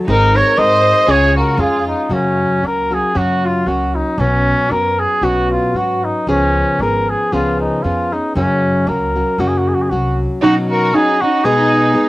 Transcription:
0.08 upright bass G#1, nylon-string guitar G#3 C4 D#4 A#4, violin section D#4, trumpet A#4
0.35 violin section A#4, trumpet C#5
0.57 upright bass G#2, nylon-string guitar G#3 C4 D#4 A#4, violin section C5, trumpet D#5
1.07 upright bass C#2, nylon-string guitar C#3 G#3 C#4 F4 G#4, violin section G#4, trumpet C#5
1.36 violin section F#4, trumpet A#4
1.57 upright bass F2, nylon-string guitar G#3 C#4 F4 G#4, violin section F4, trumpet G#4
1.87 trumpet D#4
2.09 upright bass F#2, nylon-string guitar F#2 C#3 F#3 A#3 C#4 F#4, trumpet C#4
2.62 upright bass C#2, nylon-string guitar F#3 A#3 C#4 F#4, trumpet A#4
2.91 nylon-string guitar F#3 A#3 C#4 F#4, trumpet G#4
3.14 nylon-string guitar F#2 C#3 F#3 A#3 C#4 F#4, upright bass F#2, trumpet F#4
3.45 trumpet F4
3.66 upright bass C#2, nylon-string guitar F#3 A#3 C#4 F#4, trumpet F#4
3.95 trumpet D#4
4.18 upright bass B1, nylon-string guitar B2 F#3 B3 C#4 F#4, trumpet C#4
4.70 upright bass F#2, nylon-string guitar F#3 B3 C#4 F#4, trumpet A#4
4.99 trumpet G#4
5.21 upright bass B1, nylon-string guitar B2 F#3 B3 C#4 F#4, trumpet F#4
5.51 trumpet F4
5.74 upright bass G#2, nylon-string guitar F#3 B3 C#4 F#4, trumpet F#4
6.04 trumpet D#4
6.27 upright bass C#2, nylon-string guitar C#3 F3 B3 C#4 G#4, trumpet C#4
6.79 upright bass G#1, nylon-string guitar F3 B3 C#4 G#4, trumpet A#4
7.09 trumpet G#4
7.32 upright bass C#2, nylon-string guitar C#3 F3 B3 C#4 G#4, trumpet F4
7.60 trumpet D#4
7.82 upright bass F2, nylon-string guitar F3 B3 C#4 G#4, trumpet F4
8.12 nylon-string guitar B3 C#4 G#4, trumpet D#4
8.35 upright bass F#2, nylon-string guitar F#2 C#3 F#3 A#3 C#4 F#4, trumpet C#4
8.87 upright bass C#2, nylon-string guitar F#3 A#3 C#4 F#4, trumpet A#4
9.16 nylon-string guitar F#3 A#3 C#4 F#4
9.38 upright bass F#2, nylon-string guitar F#2 C#3 F#3 A#3 C#4 F#4, trumpet F#4
9.48 trumpet G#4
9.58 trumpet F#4
9.68 trumpet G#4
9.74 trumpet F#4
9.82 trumpet G#4
9.90 upright bass C2, nylon-string guitar F#3 A#3 C#4 F#4, trumpet F#4
10.42 nylon-string guitar B2 F#3 C#4 D#4 F#4, violin section D#4, trumpet F#4
10.70 violin section F#4, trumpet A#4
10.94 nylon-string guitar F#3 C#4 D#4 F#4, violin section D#4, trumpet G#4
11.21 nylon-string guitar C#4 D#4 F#4, violin section D#4, trumpet F#4
11.44 nylon-string guitar B2 G#3 B3 D#4 G#4, violin section D#4, trumpet G#4
11.94 nylon-string guitar G#3 B3 D#4 G#4

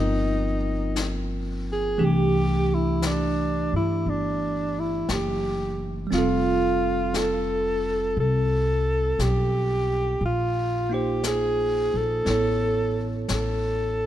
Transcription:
Already playing: upright bass G1, tine electric piano F3 A#3 C4 D#4 F4 A#4 G5, alto saxophone D#4
0.96 brush sweep, snare, hi-hat pedal
1.72 alto saxophone G#4
1.98 upright bass C2, tine electric piano E3 A3 D4 G4, brush sweep
2.04 alto saxophone G4
2.74 alto saxophone E4
3.02 alto saxophone D4, brush sweep, snare, hi-hat pedal
3.73 upright bass G2, alto saxophone E4
4.06 upright bass G1, alto saxophone D4, brush sweep
4.79 alto saxophone E4
5.09 upright bass F#1, alto saxophone G4, brush sweep, snare, hi-hat pedal
6.07 tine electric piano G3 C4
6.12 upright bass F1, alto saxophone F4, tine electric piano F4, brush sweep, snare
6.18 tine electric piano A4
7.14 alto saxophone A4, brush sweep, snare, hi-hat pedal
8.17 upright bass C2, alto saxophone A4, brush sweep
9.19 upright bass B1, alto saxophone G4, brush sweep, snare, hi-hat pedal
10.21 upright bass A#1, brush sweep
10.25 alto saxophone F4
10.89 tine electric piano A#3 D#4 F4, alto saxophone G4
10.94 tine electric piano C5
11.23 alto saxophone G#4, brush sweep, snare, hi-hat pedal
11.94 upright bass A#1, alto saxophone A4
12.25 upright bass A1, tine electric piano B3 E4 A4, brush sweep, snare
12.30 tine electric piano C#5
13.28 upright bass A1, brush sweep, snare, hi-hat pedal
13.33 alto saxophone A4

